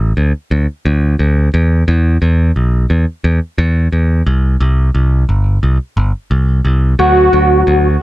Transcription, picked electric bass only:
0.00 0.12 A1 medium
0.17 0.32 D2 medium
0.51 0.66 D2 medium
0.85 1.14 D2 medium
1.19 1.48 D2 medium
1.54 1.82 E2 loud
1.88 2.17 E2 medium
2.22 2.50 E2 medium
2.56 2.85 B1 medium
2.90 3.04 E2 medium
3.24 3.39 E2 medium
3.58 3.87 E2 loud
3.92 4.21 E2 medium
4.26 4.55 C2 medium
4.60 4.89 C2 loud
4.94 5.23 C2 medium
5.29 5.57 G1 medium
5.63 5.77 C2 medium
5.97 6.11 G1 loud
6.31 6.60 C2 medium
6.65 6.94 C2 medium
6.99 7.28 D2 loud
7.33 7.62 D2 medium
7.67 7.96 D2 medium

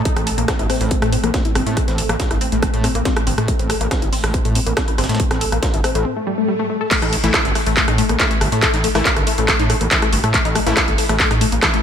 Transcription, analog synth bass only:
0.17 0.31 A1 loud
0.38 0.45 A1 loud
0.59 0.67 G1 medium
0.81 0.95 A1 loud
1.02 1.17 A2 medium
1.24 1.31 A1 medium
1.55 1.63 G1 medium
1.67 1.81 A2 medium
1.88 2.03 A1 loud
2.09 2.17 A1 loud
2.31 2.38 G1 medium
2.52 2.67 A1 loud
2.74 2.88 A2 medium
2.95 3.02 A1 medium
3.27 3.35 G1 medium
3.38 3.53 A2 medium
3.59 3.74 A1 loud
3.81 3.88 A1 loud
4.02 4.09 G1 medium
4.24 4.38 A1 loud
4.45 4.60 A2 medium
4.66 4.74 A1 medium
4.98 5.06 G1 medium
5.09 5.24 A2 medium
5.31 5.45 A1 loud
5.52 5.59 A1 loud
5.74 5.81 G1 medium
5.95 6.05 A1 loud
7.02 7.17 A1 loud
7.24 7.31 A1 loud
7.45 7.52 G1 medium
7.67 7.81 A1 loud
7.88 8.02 A2 medium
8.09 8.17 A1 medium
8.41 8.49 G1 medium
8.52 8.67 A2 medium
8.74 8.88 A1 loud
8.95 9.02 A1 loud
9.17 9.24 G1 medium
9.38 9.53 A1 loud
9.60 9.74 A2 loud
9.81 9.88 A1 medium
10.13 10.20 G1 medium
10.24 10.38 A2 medium
10.45 10.60 A1 loud
10.67 10.74 A1 loud
10.88 10.95 G1 medium
11.09 11.24 A1 loud
11.31 11.45 A2 loud
11.52 11.59 A1 medium

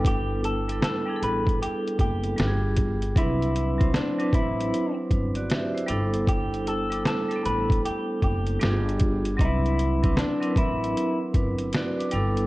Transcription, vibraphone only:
0.00 0.59 G3 medium
0.00 0.59 B3 medium
0.00 0.60 D4 medium
0.00 0.60 E4 medium
0.00 0.60 A4 loud
0.00 2.40 B4 medium
0.00 2.40 G5 medium
0.68 1.04 G3 medium
0.68 1.04 B3 medium
0.68 1.05 D4 medium
0.68 1.05 E4 medium
0.68 1.06 A4 medium
1.06 2.35 G3 medium
1.06 2.37 B3 medium
1.06 2.37 D4 medium
1.06 2.39 E4 medium
1.06 1.11 G#4 medium
1.16 2.43 A4 medium
2.37 3.12 G3 medium
2.37 3.12 B3 medium
2.37 3.12 D4 medium
2.37 3.13 F4 medium
2.37 2.48 G4 medium
2.47 3.17 G#4 medium
3.16 3.75 F#3 medium
3.16 3.75 C4 medium
3.16 3.76 D4 medium
3.16 3.76 E4 medium
3.16 3.77 B4 medium
3.78 4.15 F#3 medium
3.78 4.15 C4 medium
3.78 4.16 D4 medium
3.78 4.16 E4 medium
3.78 4.17 C5 medium
4.18 5.60 F#3 medium
4.18 5.61 C4 medium
4.18 5.10 D4 medium
4.18 5.12 E4 medium
4.18 5.10 B4 medium
5.11 5.35 D4 medium
5.11 5.35 B4 medium
5.36 5.50 F#4 medium
5.36 5.49 D5 medium
5.50 5.74 G4 medium
5.50 5.74 E5 medium
5.75 5.89 E4 medium
5.75 6.12 C5 medium
5.87 6.82 G3 medium
5.87 6.83 B3 medium
5.87 6.83 D4 medium
5.87 6.84 E4 medium
5.87 6.84 A4 loud
6.90 7.27 G3 medium
6.90 7.27 B3 medium
6.90 7.28 D4 medium
6.90 7.28 E4 medium
6.90 7.29 A4 medium
7.29 8.58 G3 medium
7.29 7.31 A3 medium
7.29 8.60 D4 medium
7.29 8.62 E4 medium
7.29 8.62 A4 medium
7.36 8.59 B3 medium
8.59 9.35 G3 medium
8.59 9.35 B3 medium
8.59 9.35 D4 medium
8.59 9.36 F4 medium
8.59 8.71 G4 medium
8.70 9.40 G#4 medium
9.37 9.97 F#3 medium
9.37 9.98 C4 medium
9.37 9.98 D4 medium
9.37 9.99 E4 medium
9.41 9.99 B4 medium
10.03 10.39 F#3 medium
10.03 10.39 C4 medium
10.03 10.40 D4 medium
10.03 10.40 E4 medium
10.07 10.41 B4 medium
10.41 11.83 F#3 medium
10.41 11.84 C4 medium
10.41 11.34 D4 medium
10.41 11.35 E4 medium
10.41 10.46 A#4 medium
10.51 11.34 B4 medium
11.35 11.72 D4 medium
11.35 11.72 B4 medium
11.73 11.98 F#4 medium
11.73 11.97 D5 medium
11.99 12.12 D4 medium
11.99 12.36 B4 medium
12.11 12.47 G3 medium
12.11 12.47 B3 medium
12.11 12.47 D4 medium
12.11 12.47 E4 medium
12.11 12.47 A4 medium

